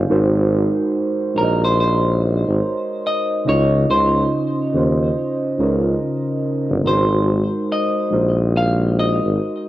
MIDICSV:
0, 0, Header, 1, 4, 480
1, 0, Start_track
1, 0, Tempo, 845070
1, 50, Time_signature, 4, 2, 24, 8
1, 5502, End_track
2, 0, Start_track
2, 0, Title_t, "Clean electric guitar"
2, 0, Program_c, 0, 27
2, 782, Note_on_c, 0, 70, 81
2, 932, Note_off_c, 0, 70, 0
2, 935, Note_on_c, 0, 72, 88
2, 1017, Note_off_c, 0, 72, 0
2, 1024, Note_on_c, 0, 72, 91
2, 1740, Note_off_c, 0, 72, 0
2, 1742, Note_on_c, 0, 75, 98
2, 1979, Note_off_c, 0, 75, 0
2, 1981, Note_on_c, 0, 73, 103
2, 2216, Note_off_c, 0, 73, 0
2, 2218, Note_on_c, 0, 72, 92
2, 3632, Note_off_c, 0, 72, 0
2, 3904, Note_on_c, 0, 72, 87
2, 4384, Note_off_c, 0, 72, 0
2, 4386, Note_on_c, 0, 75, 94
2, 4866, Note_off_c, 0, 75, 0
2, 4869, Note_on_c, 0, 77, 101
2, 5106, Note_off_c, 0, 77, 0
2, 5108, Note_on_c, 0, 75, 94
2, 5502, Note_off_c, 0, 75, 0
2, 5502, End_track
3, 0, Start_track
3, 0, Title_t, "Synth keys"
3, 0, Program_c, 1, 88
3, 0, Control_c, 1, 64, 127
3, 0, Note_on_c, 1, 63, 56
3, 0, Note_on_c, 1, 65, 59
3, 0, Note_on_c, 1, 68, 61
3, 0, Note_on_c, 1, 72, 68
3, 0, Note_on_c, 1, 73, 67
3, 0, Note_on_c, 1, 77, 70
3, 0, Note_on_c, 1, 80, 62
3, 51, Note_on_c, 1, 56, 90
3, 54, Note_off_c, 1, 63, 0
3, 54, Note_on_c, 1, 63, 101
3, 58, Control_c, 1, 64, 0
3, 58, Note_on_c, 1, 66, 92
3, 59, Note_off_c, 1, 72, 0
3, 60, Note_off_c, 1, 65, 0
3, 60, Note_on_c, 1, 70, 91
3, 62, Note_off_c, 1, 73, 0
3, 62, Note_off_c, 1, 77, 0
3, 62, Note_off_c, 1, 80, 0
3, 64, Note_off_c, 1, 68, 0
3, 66, Note_on_c, 1, 72, 108
3, 171, Control_c, 1, 64, 127
3, 671, Note_off_c, 1, 56, 0
3, 673, Note_off_c, 1, 63, 0
3, 675, Note_off_c, 1, 66, 0
3, 676, Note_off_c, 1, 70, 0
3, 679, Note_off_c, 1, 72, 0
3, 762, Note_on_c, 1, 56, 72
3, 766, Note_on_c, 1, 63, 72
3, 771, Note_on_c, 1, 66, 66
3, 774, Note_on_c, 1, 70, 73
3, 778, Note_on_c, 1, 73, 62
3, 815, Note_on_c, 1, 75, 75
3, 821, Note_off_c, 1, 73, 0
3, 1572, Note_off_c, 1, 56, 0
3, 1574, Note_off_c, 1, 63, 0
3, 1577, Note_off_c, 1, 66, 0
3, 1578, Note_off_c, 1, 70, 0
3, 1599, Note_off_c, 1, 75, 0
3, 1958, Note_on_c, 1, 49, 90
3, 1961, Note_on_c, 1, 61, 84
3, 1967, Note_on_c, 1, 63, 85
3, 1971, Note_on_c, 1, 64, 72
3, 1973, Note_on_c, 1, 75, 97
3, 1978, Control_c, 1, 64, 0
3, 2007, Note_on_c, 1, 65, 82
3, 2017, Note_off_c, 1, 64, 0
3, 2091, Control_c, 1, 64, 127
3, 2585, Note_off_c, 1, 49, 0
3, 2586, Note_off_c, 1, 61, 0
3, 2589, Note_off_c, 1, 63, 0
3, 2592, Note_off_c, 1, 75, 0
3, 2609, Note_off_c, 1, 65, 0
3, 2689, Note_on_c, 1, 49, 74
3, 2694, Note_on_c, 1, 61, 65
3, 2700, Note_on_c, 1, 63, 65
3, 2701, Note_on_c, 1, 65, 62
3, 2706, Note_on_c, 1, 72, 77
3, 3106, Note_off_c, 1, 49, 0
3, 3109, Note_off_c, 1, 61, 0
3, 3112, Note_off_c, 1, 63, 0
3, 3113, Note_off_c, 1, 65, 0
3, 3115, Note_off_c, 1, 72, 0
3, 3169, Note_on_c, 1, 49, 78
3, 3174, Note_on_c, 1, 61, 72
3, 3178, Note_on_c, 1, 63, 71
3, 3182, Note_on_c, 1, 65, 72
3, 3185, Note_on_c, 1, 70, 79
3, 3790, Note_off_c, 1, 49, 0
3, 3793, Note_off_c, 1, 61, 0
3, 3795, Note_off_c, 1, 63, 0
3, 3797, Note_off_c, 1, 65, 0
3, 3798, Note_off_c, 1, 70, 0
3, 3882, Note_on_c, 1, 56, 83
3, 3887, Note_on_c, 1, 63, 82
3, 3890, Note_on_c, 1, 66, 80
3, 3895, Note_on_c, 1, 70, 78
3, 3898, Control_c, 1, 64, 0
3, 3898, Note_on_c, 1, 71, 69
3, 3934, Note_on_c, 1, 72, 92
3, 3941, Note_off_c, 1, 71, 0
3, 3986, Control_c, 1, 64, 127
3, 4507, Note_off_c, 1, 56, 0
3, 4509, Note_off_c, 1, 63, 0
3, 4511, Note_off_c, 1, 66, 0
3, 4513, Note_off_c, 1, 70, 0
3, 4533, Note_off_c, 1, 72, 0
3, 4604, Note_on_c, 1, 56, 82
3, 4608, Note_on_c, 1, 63, 61
3, 4613, Note_on_c, 1, 66, 67
3, 4617, Note_on_c, 1, 70, 67
3, 4620, Note_on_c, 1, 72, 74
3, 5413, Note_off_c, 1, 56, 0
3, 5415, Note_off_c, 1, 63, 0
3, 5418, Note_off_c, 1, 66, 0
3, 5420, Note_off_c, 1, 70, 0
3, 5421, Note_off_c, 1, 72, 0
3, 5502, End_track
4, 0, Start_track
4, 0, Title_t, "Tuba"
4, 0, Program_c, 2, 58
4, 55, Note_on_c, 2, 32, 110
4, 422, Note_off_c, 2, 32, 0
4, 776, Note_on_c, 2, 34, 96
4, 1382, Note_off_c, 2, 34, 0
4, 1409, Note_on_c, 2, 32, 84
4, 1487, Note_off_c, 2, 32, 0
4, 1974, Note_on_c, 2, 37, 104
4, 2192, Note_off_c, 2, 37, 0
4, 2211, Note_on_c, 2, 37, 96
4, 2431, Note_off_c, 2, 37, 0
4, 2692, Note_on_c, 2, 39, 91
4, 2912, Note_off_c, 2, 39, 0
4, 3172, Note_on_c, 2, 37, 83
4, 3391, Note_off_c, 2, 37, 0
4, 3805, Note_on_c, 2, 31, 90
4, 3884, Note_off_c, 2, 31, 0
4, 3891, Note_on_c, 2, 32, 103
4, 4260, Note_off_c, 2, 32, 0
4, 4613, Note_on_c, 2, 34, 99
4, 5220, Note_off_c, 2, 34, 0
4, 5249, Note_on_c, 2, 32, 84
4, 5327, Note_off_c, 2, 32, 0
4, 5502, End_track
0, 0, End_of_file